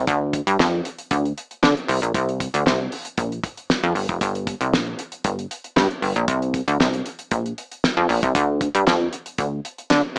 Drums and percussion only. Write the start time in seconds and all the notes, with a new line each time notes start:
0.07 kick, closed hi-hat
0.33 kick, closed hi-hat
0.47 closed hi-hat
0.60 snare
0.85 closed hi-hat
0.98 closed hi-hat
1.11 kick, closed hi-hat
1.25 closed hi-hat
1.38 closed hi-hat
1.51 closed hi-hat
1.63 snare
1.77 closed hi-hat
1.89 open hi-hat
2.03 closed hi-hat
2.14 kick, closed hi-hat
2.29 closed hi-hat
2.40 kick, closed hi-hat
2.54 closed hi-hat
2.67 snare
2.92 open hi-hat
3.05 closed hi-hat
3.18 kick, closed hi-hat
3.32 closed hi-hat
3.44 kick, closed hi-hat
3.57 closed hi-hat
3.70 snare
3.84 closed hi-hat
3.95 open hi-hat
4.09 kick, closed hi-hat
4.21 kick, closed hi-hat
4.35 closed hi-hat
4.47 kick, closed hi-hat
4.61 closed hi-hat
4.74 snare
4.99 closed hi-hat
5.12 closed hi-hat
5.24 kick, closed hi-hat
5.39 closed hi-hat
5.51 closed hi-hat
5.64 closed hi-hat
5.77 snare
5.91 closed hi-hat
6.02 open hi-hat
6.16 closed hi-hat
6.28 kick, closed hi-hat
6.42 closed hi-hat
6.54 kick, closed hi-hat
6.68 closed hi-hat
6.81 snare
6.93 closed hi-hat
7.06 closed hi-hat
7.19 closed hi-hat
7.31 kick, closed hi-hat
7.46 closed hi-hat
7.58 closed hi-hat
7.71 closed hi-hat
7.84 snare
8.09 open hi-hat
8.23 kick, closed hi-hat
8.35 kick, closed hi-hat
8.61 kick, closed hi-hat
8.75 closed hi-hat
8.87 snare
9.13 closed hi-hat
9.26 closed hi-hat
9.38 kick, closed hi-hat
9.65 closed hi-hat
9.78 closed hi-hat
9.91 snare